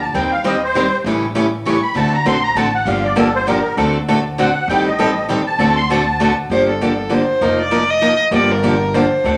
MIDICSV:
0, 0, Header, 1, 6, 480
1, 0, Start_track
1, 0, Key_signature, -2, "minor"
1, 0, Tempo, 303490
1, 217, Time_signature, 3, 2, 24, 8
1, 14826, End_track
2, 0, Start_track
2, 0, Title_t, "Accordion"
2, 0, Program_c, 0, 21
2, 25, Note_on_c, 0, 81, 91
2, 217, Note_off_c, 0, 81, 0
2, 226, Note_on_c, 0, 79, 75
2, 488, Note_off_c, 0, 79, 0
2, 495, Note_on_c, 0, 77, 90
2, 692, Note_off_c, 0, 77, 0
2, 728, Note_on_c, 0, 75, 75
2, 979, Note_off_c, 0, 75, 0
2, 1018, Note_on_c, 0, 72, 107
2, 1538, Note_off_c, 0, 72, 0
2, 2637, Note_on_c, 0, 85, 89
2, 2888, Note_on_c, 0, 83, 96
2, 2894, Note_off_c, 0, 85, 0
2, 3087, Note_off_c, 0, 83, 0
2, 3111, Note_on_c, 0, 81, 92
2, 3370, Note_off_c, 0, 81, 0
2, 3383, Note_on_c, 0, 82, 100
2, 3575, Note_off_c, 0, 82, 0
2, 3582, Note_on_c, 0, 84, 111
2, 3846, Note_off_c, 0, 84, 0
2, 3849, Note_on_c, 0, 82, 116
2, 4048, Note_off_c, 0, 82, 0
2, 4053, Note_on_c, 0, 81, 89
2, 4321, Note_off_c, 0, 81, 0
2, 4347, Note_on_c, 0, 78, 91
2, 4537, Note_off_c, 0, 78, 0
2, 4549, Note_on_c, 0, 77, 84
2, 4809, Note_off_c, 0, 77, 0
2, 4815, Note_on_c, 0, 74, 90
2, 5011, Note_off_c, 0, 74, 0
2, 5016, Note_on_c, 0, 69, 72
2, 5282, Note_off_c, 0, 69, 0
2, 5299, Note_on_c, 0, 72, 114
2, 5493, Note_off_c, 0, 72, 0
2, 5513, Note_on_c, 0, 70, 86
2, 5950, Note_off_c, 0, 70, 0
2, 6963, Note_on_c, 0, 78, 79
2, 7395, Note_off_c, 0, 78, 0
2, 7413, Note_on_c, 0, 79, 105
2, 7680, Note_off_c, 0, 79, 0
2, 7699, Note_on_c, 0, 75, 79
2, 8330, Note_off_c, 0, 75, 0
2, 8643, Note_on_c, 0, 81, 104
2, 9091, Note_off_c, 0, 81, 0
2, 9114, Note_on_c, 0, 84, 127
2, 9318, Note_off_c, 0, 84, 0
2, 9341, Note_on_c, 0, 81, 95
2, 10039, Note_off_c, 0, 81, 0
2, 14826, End_track
3, 0, Start_track
3, 0, Title_t, "Violin"
3, 0, Program_c, 1, 40
3, 10304, Note_on_c, 1, 72, 91
3, 10554, Note_off_c, 1, 72, 0
3, 10577, Note_on_c, 1, 69, 72
3, 11284, Note_on_c, 1, 72, 84
3, 11307, Note_off_c, 1, 69, 0
3, 12024, Note_off_c, 1, 72, 0
3, 12034, Note_on_c, 1, 74, 92
3, 12501, Note_on_c, 1, 75, 112
3, 12525, Note_off_c, 1, 74, 0
3, 12975, Note_off_c, 1, 75, 0
3, 13207, Note_on_c, 1, 74, 86
3, 13465, Note_on_c, 1, 70, 90
3, 13489, Note_off_c, 1, 74, 0
3, 14146, Note_on_c, 1, 72, 83
3, 14170, Note_off_c, 1, 70, 0
3, 14826, Note_off_c, 1, 72, 0
3, 14826, End_track
4, 0, Start_track
4, 0, Title_t, "Steel-string acoustic guitar"
4, 0, Program_c, 2, 25
4, 245, Note_on_c, 2, 70, 80
4, 531, Note_off_c, 2, 70, 0
4, 715, Note_on_c, 2, 70, 94
4, 869, Note_off_c, 2, 70, 0
4, 1193, Note_on_c, 2, 70, 100
4, 1348, Note_off_c, 2, 70, 0
4, 1683, Note_on_c, 2, 55, 84
4, 1693, Note_on_c, 2, 64, 87
4, 1693, Note_on_c, 2, 69, 89
4, 1970, Note_off_c, 2, 55, 0
4, 1975, Note_off_c, 2, 64, 0
4, 1975, Note_off_c, 2, 69, 0
4, 2142, Note_on_c, 2, 55, 78
4, 2151, Note_on_c, 2, 69, 95
4, 2155, Note_on_c, 2, 64, 97
4, 2302, Note_off_c, 2, 55, 0
4, 2307, Note_off_c, 2, 69, 0
4, 2309, Note_off_c, 2, 64, 0
4, 2626, Note_on_c, 2, 55, 91
4, 2632, Note_on_c, 2, 69, 96
4, 2633, Note_on_c, 2, 64, 107
4, 2784, Note_off_c, 2, 55, 0
4, 2787, Note_off_c, 2, 64, 0
4, 2787, Note_off_c, 2, 69, 0
4, 14826, End_track
5, 0, Start_track
5, 0, Title_t, "Steel-string acoustic guitar"
5, 0, Program_c, 3, 25
5, 226, Note_on_c, 3, 51, 74
5, 230, Note_on_c, 3, 55, 71
5, 230, Note_on_c, 3, 60, 79
5, 242, Note_on_c, 3, 67, 78
5, 243, Note_on_c, 3, 72, 82
5, 522, Note_off_c, 3, 51, 0
5, 523, Note_off_c, 3, 55, 0
5, 524, Note_off_c, 3, 60, 0
5, 529, Note_off_c, 3, 67, 0
5, 530, Note_off_c, 3, 72, 0
5, 700, Note_on_c, 3, 51, 92
5, 705, Note_on_c, 3, 55, 87
5, 707, Note_on_c, 3, 72, 108
5, 709, Note_on_c, 3, 60, 89
5, 711, Note_on_c, 3, 67, 104
5, 862, Note_off_c, 3, 51, 0
5, 864, Note_off_c, 3, 55, 0
5, 865, Note_off_c, 3, 72, 0
5, 866, Note_off_c, 3, 60, 0
5, 867, Note_off_c, 3, 67, 0
5, 1190, Note_on_c, 3, 51, 79
5, 1202, Note_on_c, 3, 55, 94
5, 1204, Note_on_c, 3, 67, 97
5, 1212, Note_on_c, 3, 60, 89
5, 1219, Note_on_c, 3, 72, 83
5, 1346, Note_off_c, 3, 51, 0
5, 1353, Note_off_c, 3, 55, 0
5, 1354, Note_off_c, 3, 67, 0
5, 1357, Note_off_c, 3, 60, 0
5, 1361, Note_off_c, 3, 72, 0
5, 1675, Note_on_c, 3, 49, 72
5, 1683, Note_on_c, 3, 57, 75
5, 1689, Note_on_c, 3, 52, 83
5, 1692, Note_on_c, 3, 61, 86
5, 1695, Note_on_c, 3, 67, 86
5, 1966, Note_off_c, 3, 49, 0
5, 1969, Note_off_c, 3, 57, 0
5, 1973, Note_off_c, 3, 52, 0
5, 1974, Note_off_c, 3, 61, 0
5, 1976, Note_off_c, 3, 67, 0
5, 2135, Note_on_c, 3, 49, 97
5, 2141, Note_on_c, 3, 52, 100
5, 2141, Note_on_c, 3, 57, 91
5, 2153, Note_on_c, 3, 61, 112
5, 2159, Note_on_c, 3, 67, 107
5, 2299, Note_off_c, 3, 49, 0
5, 2302, Note_off_c, 3, 52, 0
5, 2302, Note_off_c, 3, 57, 0
5, 2308, Note_off_c, 3, 61, 0
5, 2311, Note_off_c, 3, 67, 0
5, 2627, Note_on_c, 3, 49, 86
5, 2632, Note_on_c, 3, 57, 90
5, 2634, Note_on_c, 3, 52, 98
5, 2638, Note_on_c, 3, 61, 91
5, 2644, Note_on_c, 3, 67, 92
5, 2785, Note_off_c, 3, 49, 0
5, 2787, Note_off_c, 3, 57, 0
5, 2788, Note_off_c, 3, 52, 0
5, 2790, Note_off_c, 3, 61, 0
5, 2793, Note_off_c, 3, 67, 0
5, 3102, Note_on_c, 3, 50, 74
5, 3109, Note_on_c, 3, 60, 80
5, 3115, Note_on_c, 3, 57, 77
5, 3116, Note_on_c, 3, 66, 81
5, 3123, Note_on_c, 3, 69, 90
5, 3399, Note_off_c, 3, 50, 0
5, 3402, Note_off_c, 3, 60, 0
5, 3405, Note_off_c, 3, 57, 0
5, 3406, Note_off_c, 3, 66, 0
5, 3409, Note_off_c, 3, 69, 0
5, 3569, Note_on_c, 3, 50, 93
5, 3577, Note_on_c, 3, 57, 89
5, 3579, Note_on_c, 3, 66, 97
5, 3579, Note_on_c, 3, 69, 100
5, 3580, Note_on_c, 3, 60, 90
5, 3735, Note_off_c, 3, 50, 0
5, 3740, Note_off_c, 3, 57, 0
5, 3740, Note_off_c, 3, 69, 0
5, 3741, Note_off_c, 3, 60, 0
5, 3741, Note_off_c, 3, 66, 0
5, 4055, Note_on_c, 3, 50, 81
5, 4058, Note_on_c, 3, 57, 88
5, 4058, Note_on_c, 3, 69, 98
5, 4061, Note_on_c, 3, 60, 86
5, 4063, Note_on_c, 3, 66, 91
5, 4218, Note_off_c, 3, 50, 0
5, 4220, Note_off_c, 3, 57, 0
5, 4220, Note_off_c, 3, 69, 0
5, 4221, Note_off_c, 3, 60, 0
5, 4222, Note_off_c, 3, 66, 0
5, 4530, Note_on_c, 3, 53, 68
5, 4532, Note_on_c, 3, 50, 79
5, 4541, Note_on_c, 3, 62, 89
5, 4542, Note_on_c, 3, 58, 68
5, 4547, Note_on_c, 3, 67, 78
5, 4833, Note_off_c, 3, 50, 0
5, 4833, Note_off_c, 3, 53, 0
5, 4838, Note_off_c, 3, 58, 0
5, 4838, Note_off_c, 3, 62, 0
5, 4841, Note_off_c, 3, 67, 0
5, 4992, Note_on_c, 3, 50, 91
5, 5000, Note_on_c, 3, 53, 87
5, 5002, Note_on_c, 3, 58, 101
5, 5008, Note_on_c, 3, 67, 111
5, 5010, Note_on_c, 3, 62, 107
5, 5167, Note_off_c, 3, 50, 0
5, 5170, Note_off_c, 3, 53, 0
5, 5171, Note_off_c, 3, 58, 0
5, 5175, Note_off_c, 3, 67, 0
5, 5176, Note_off_c, 3, 62, 0
5, 5486, Note_on_c, 3, 50, 99
5, 5497, Note_on_c, 3, 67, 88
5, 5499, Note_on_c, 3, 58, 86
5, 5500, Note_on_c, 3, 53, 91
5, 5506, Note_on_c, 3, 62, 105
5, 5653, Note_off_c, 3, 50, 0
5, 5659, Note_off_c, 3, 67, 0
5, 5660, Note_off_c, 3, 53, 0
5, 5660, Note_off_c, 3, 58, 0
5, 5663, Note_off_c, 3, 62, 0
5, 5964, Note_on_c, 3, 50, 76
5, 5971, Note_on_c, 3, 57, 89
5, 5978, Note_on_c, 3, 60, 90
5, 5979, Note_on_c, 3, 69, 78
5, 5985, Note_on_c, 3, 66, 88
5, 6269, Note_off_c, 3, 50, 0
5, 6272, Note_off_c, 3, 57, 0
5, 6276, Note_off_c, 3, 60, 0
5, 6276, Note_off_c, 3, 69, 0
5, 6279, Note_off_c, 3, 66, 0
5, 6460, Note_on_c, 3, 50, 90
5, 6460, Note_on_c, 3, 66, 103
5, 6461, Note_on_c, 3, 57, 91
5, 6461, Note_on_c, 3, 60, 90
5, 6466, Note_on_c, 3, 69, 112
5, 6620, Note_off_c, 3, 50, 0
5, 6620, Note_off_c, 3, 57, 0
5, 6620, Note_off_c, 3, 60, 0
5, 6620, Note_off_c, 3, 66, 0
5, 6623, Note_off_c, 3, 69, 0
5, 6932, Note_on_c, 3, 50, 92
5, 6940, Note_on_c, 3, 57, 97
5, 6947, Note_on_c, 3, 60, 107
5, 6949, Note_on_c, 3, 66, 103
5, 6951, Note_on_c, 3, 69, 95
5, 7096, Note_off_c, 3, 50, 0
5, 7100, Note_off_c, 3, 57, 0
5, 7103, Note_off_c, 3, 60, 0
5, 7104, Note_off_c, 3, 66, 0
5, 7105, Note_off_c, 3, 69, 0
5, 7435, Note_on_c, 3, 51, 82
5, 7441, Note_on_c, 3, 55, 78
5, 7441, Note_on_c, 3, 60, 79
5, 7448, Note_on_c, 3, 67, 86
5, 7451, Note_on_c, 3, 69, 88
5, 7724, Note_off_c, 3, 51, 0
5, 7727, Note_off_c, 3, 55, 0
5, 7727, Note_off_c, 3, 60, 0
5, 7730, Note_off_c, 3, 67, 0
5, 7732, Note_off_c, 3, 69, 0
5, 7887, Note_on_c, 3, 51, 90
5, 7897, Note_on_c, 3, 55, 102
5, 7897, Note_on_c, 3, 69, 111
5, 7901, Note_on_c, 3, 60, 95
5, 7910, Note_on_c, 3, 67, 105
5, 8053, Note_off_c, 3, 51, 0
5, 8058, Note_off_c, 3, 55, 0
5, 8058, Note_off_c, 3, 69, 0
5, 8060, Note_off_c, 3, 60, 0
5, 8064, Note_off_c, 3, 67, 0
5, 8359, Note_on_c, 3, 51, 94
5, 8370, Note_on_c, 3, 55, 88
5, 8372, Note_on_c, 3, 60, 86
5, 8377, Note_on_c, 3, 67, 101
5, 8385, Note_on_c, 3, 69, 106
5, 8529, Note_off_c, 3, 51, 0
5, 8534, Note_off_c, 3, 55, 0
5, 8535, Note_off_c, 3, 60, 0
5, 8538, Note_off_c, 3, 67, 0
5, 8542, Note_off_c, 3, 69, 0
5, 8841, Note_on_c, 3, 50, 75
5, 8847, Note_on_c, 3, 57, 79
5, 8847, Note_on_c, 3, 60, 86
5, 8852, Note_on_c, 3, 69, 86
5, 8858, Note_on_c, 3, 66, 89
5, 9147, Note_off_c, 3, 50, 0
5, 9149, Note_off_c, 3, 57, 0
5, 9149, Note_off_c, 3, 60, 0
5, 9152, Note_off_c, 3, 69, 0
5, 9155, Note_off_c, 3, 66, 0
5, 9331, Note_on_c, 3, 50, 96
5, 9337, Note_on_c, 3, 57, 106
5, 9339, Note_on_c, 3, 60, 98
5, 9350, Note_on_c, 3, 66, 95
5, 9352, Note_on_c, 3, 69, 115
5, 9495, Note_off_c, 3, 50, 0
5, 9498, Note_off_c, 3, 57, 0
5, 9499, Note_off_c, 3, 60, 0
5, 9504, Note_off_c, 3, 66, 0
5, 9505, Note_off_c, 3, 69, 0
5, 9807, Note_on_c, 3, 50, 90
5, 9812, Note_on_c, 3, 57, 96
5, 9819, Note_on_c, 3, 60, 92
5, 9823, Note_on_c, 3, 66, 97
5, 9824, Note_on_c, 3, 69, 109
5, 9973, Note_off_c, 3, 50, 0
5, 9975, Note_off_c, 3, 57, 0
5, 9979, Note_off_c, 3, 60, 0
5, 9981, Note_off_c, 3, 66, 0
5, 9981, Note_off_c, 3, 69, 0
5, 10298, Note_on_c, 3, 53, 73
5, 10302, Note_on_c, 3, 50, 69
5, 10302, Note_on_c, 3, 58, 70
5, 10305, Note_on_c, 3, 67, 81
5, 10309, Note_on_c, 3, 62, 72
5, 10595, Note_off_c, 3, 53, 0
5, 10597, Note_off_c, 3, 50, 0
5, 10597, Note_off_c, 3, 58, 0
5, 10598, Note_off_c, 3, 67, 0
5, 10601, Note_off_c, 3, 62, 0
5, 10774, Note_on_c, 3, 50, 84
5, 10779, Note_on_c, 3, 53, 89
5, 10784, Note_on_c, 3, 67, 86
5, 10786, Note_on_c, 3, 58, 89
5, 10794, Note_on_c, 3, 62, 97
5, 10937, Note_off_c, 3, 50, 0
5, 10939, Note_off_c, 3, 53, 0
5, 10942, Note_off_c, 3, 67, 0
5, 10943, Note_off_c, 3, 58, 0
5, 10946, Note_off_c, 3, 62, 0
5, 11222, Note_on_c, 3, 50, 89
5, 11228, Note_on_c, 3, 53, 84
5, 11231, Note_on_c, 3, 67, 86
5, 11232, Note_on_c, 3, 62, 91
5, 11241, Note_on_c, 3, 58, 90
5, 11400, Note_off_c, 3, 50, 0
5, 11404, Note_off_c, 3, 53, 0
5, 11405, Note_off_c, 3, 67, 0
5, 11406, Note_off_c, 3, 62, 0
5, 11410, Note_off_c, 3, 58, 0
5, 11724, Note_on_c, 3, 53, 77
5, 11730, Note_on_c, 3, 65, 75
5, 11732, Note_on_c, 3, 58, 79
5, 11738, Note_on_c, 3, 70, 86
5, 11740, Note_on_c, 3, 63, 74
5, 12029, Note_off_c, 3, 53, 0
5, 12032, Note_off_c, 3, 65, 0
5, 12033, Note_off_c, 3, 58, 0
5, 12036, Note_off_c, 3, 70, 0
5, 12037, Note_off_c, 3, 63, 0
5, 12196, Note_on_c, 3, 58, 97
5, 12196, Note_on_c, 3, 63, 89
5, 12198, Note_on_c, 3, 53, 87
5, 12205, Note_on_c, 3, 65, 101
5, 12206, Note_on_c, 3, 70, 104
5, 12368, Note_off_c, 3, 58, 0
5, 12368, Note_off_c, 3, 63, 0
5, 12369, Note_off_c, 3, 53, 0
5, 12373, Note_off_c, 3, 65, 0
5, 12373, Note_off_c, 3, 70, 0
5, 12675, Note_on_c, 3, 53, 84
5, 12680, Note_on_c, 3, 63, 89
5, 12684, Note_on_c, 3, 58, 95
5, 12690, Note_on_c, 3, 70, 104
5, 12694, Note_on_c, 3, 65, 100
5, 12847, Note_off_c, 3, 53, 0
5, 12850, Note_off_c, 3, 63, 0
5, 12852, Note_off_c, 3, 58, 0
5, 12855, Note_off_c, 3, 70, 0
5, 12857, Note_off_c, 3, 65, 0
5, 13153, Note_on_c, 3, 58, 93
5, 13157, Note_on_c, 3, 53, 80
5, 13159, Note_on_c, 3, 50, 77
5, 13162, Note_on_c, 3, 62, 87
5, 13164, Note_on_c, 3, 67, 77
5, 13464, Note_off_c, 3, 58, 0
5, 13465, Note_off_c, 3, 53, 0
5, 13466, Note_off_c, 3, 50, 0
5, 13468, Note_off_c, 3, 62, 0
5, 13469, Note_off_c, 3, 67, 0
5, 13649, Note_on_c, 3, 50, 93
5, 13659, Note_on_c, 3, 53, 103
5, 13660, Note_on_c, 3, 58, 103
5, 13661, Note_on_c, 3, 62, 103
5, 13662, Note_on_c, 3, 67, 104
5, 13815, Note_off_c, 3, 50, 0
5, 13820, Note_off_c, 3, 53, 0
5, 13820, Note_off_c, 3, 58, 0
5, 13821, Note_off_c, 3, 62, 0
5, 13821, Note_off_c, 3, 67, 0
5, 14142, Note_on_c, 3, 53, 96
5, 14144, Note_on_c, 3, 50, 90
5, 14150, Note_on_c, 3, 58, 95
5, 14155, Note_on_c, 3, 62, 97
5, 14159, Note_on_c, 3, 67, 95
5, 14301, Note_off_c, 3, 53, 0
5, 14302, Note_off_c, 3, 50, 0
5, 14305, Note_off_c, 3, 58, 0
5, 14308, Note_off_c, 3, 62, 0
5, 14310, Note_off_c, 3, 67, 0
5, 14626, Note_on_c, 3, 50, 77
5, 14633, Note_on_c, 3, 57, 70
5, 14641, Note_on_c, 3, 60, 76
5, 14646, Note_on_c, 3, 66, 83
5, 14646, Note_on_c, 3, 69, 81
5, 14826, Note_off_c, 3, 50, 0
5, 14826, Note_off_c, 3, 57, 0
5, 14826, Note_off_c, 3, 60, 0
5, 14826, Note_off_c, 3, 66, 0
5, 14826, Note_off_c, 3, 69, 0
5, 14826, End_track
6, 0, Start_track
6, 0, Title_t, "Upright bass"
6, 0, Program_c, 4, 32
6, 220, Note_on_c, 4, 39, 92
6, 1370, Note_off_c, 4, 39, 0
6, 1649, Note_on_c, 4, 33, 101
6, 2803, Note_off_c, 4, 33, 0
6, 3084, Note_on_c, 4, 38, 100
6, 3472, Note_off_c, 4, 38, 0
6, 3560, Note_on_c, 4, 34, 75
6, 3974, Note_off_c, 4, 34, 0
6, 4035, Note_on_c, 4, 33, 80
6, 4451, Note_off_c, 4, 33, 0
6, 4513, Note_on_c, 4, 31, 99
6, 5673, Note_off_c, 4, 31, 0
6, 5963, Note_on_c, 4, 38, 102
6, 7118, Note_off_c, 4, 38, 0
6, 7397, Note_on_c, 4, 33, 109
6, 8555, Note_off_c, 4, 33, 0
6, 8835, Note_on_c, 4, 38, 102
6, 9993, Note_off_c, 4, 38, 0
6, 10275, Note_on_c, 4, 31, 94
6, 11434, Note_off_c, 4, 31, 0
6, 11721, Note_on_c, 4, 29, 86
6, 12878, Note_off_c, 4, 29, 0
6, 13145, Note_on_c, 4, 31, 100
6, 14309, Note_off_c, 4, 31, 0
6, 14611, Note_on_c, 4, 38, 95
6, 14826, Note_off_c, 4, 38, 0
6, 14826, End_track
0, 0, End_of_file